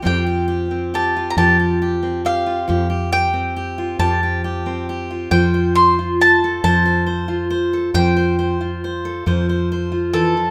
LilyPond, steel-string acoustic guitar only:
\new Staff \with { instrumentName = "Steel-string acoustic guitar" } { \time 6/8 \key f \major \tempo 4. = 46 << { <c' f' g'>16 g'16 g'8 g'16 f'16 g'16 g'16 g'8 g'16 f'16 | g'16 g'16 g'8 g'16 f'16 g'16 g'16 g'8 g'16 f'16 | c''16 c''16 c''8 c''16 a'16 c''16 c''16 c''8 c''16 a'16 | c''16 c''16 c''8 c''16 a'16 c''16 c''16 c''4 | } \\ { f8. c'8. f8. c'8. | f8. c'8. f8. c'8. | f8. f'8. f8. f'8. | f8. f'8. f8. f'16 e16 f16 | } >> }